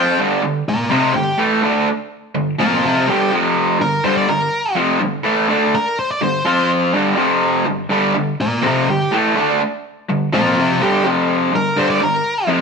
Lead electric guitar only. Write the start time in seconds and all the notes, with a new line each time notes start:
Already playing: G5
0.68 F4 D5
0.90 G4 C5
1.16 G4
2.60 F4 D5
2.86 G4 C5
3.10 G4
3.82 A#4
4.04 C5
4.18 D5
4.29 A#4
5.75 A#4
5.99 C5
6.11 D5
6.24 C5
8.41 F4 D5
8.66 G4 C5
8.90 G4
10.34 F4 D5
10.60 G4 C5
10.83 G4
11.56 A#4
11.79 C5
11.90 D5
12.03 A#4